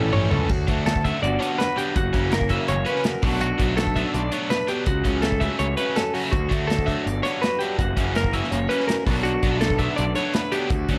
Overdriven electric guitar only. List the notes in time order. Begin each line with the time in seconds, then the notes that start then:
Already playing: E3 G3 C#4 G4
0.13 A2 E3 G3 C#4 G4
0.31 G3 C#4 G4
0.67 D3 F#3 A3 D4
1.05 D3 F#3 A3 D4
1.40 D3 G3 B3 D4
1.77 D3 G3 B3 D4
2.13 C#3 E3 A#3 C#4
2.49 C#3 E3 A#3 C#4
2.85 C#3 E3 A#3 C#4
3.23 B2 F#3 B3 D4
3.59 B2 F#3 B3 D4
3.97 B2 F#3 B3 D4
4.32 B2 F#3 B3 D4
4.67 B2 F#3 B3 D4
5.04 C#3 F#3 A3 C#4
5.41 C#3 F#3 A3 C#4
5.78 C#3 F#3 A3 C#4
6.14 C#3 F#3 A3 C#4
6.49 D3 F#3 A3 D4
6.86 D3 F#3 A3 D4
7.23 D3 G3 B3 D4
7.61 D3 G3 B3 D4
7.97 C#3 E3 A#3 C#4
8.33 C#3 E3 A#3 C#4
8.70 C#3 E3 A#3 C#4
9.07 B2 F#3 B3 D4
9.43 B2 F#3 B3 D4
9.79 B2 F#3 B3 D4
10.17 B2 F#3 B3 D4
10.52 B2 F#3 B3 D4
10.89 D3 F#3 A3 D4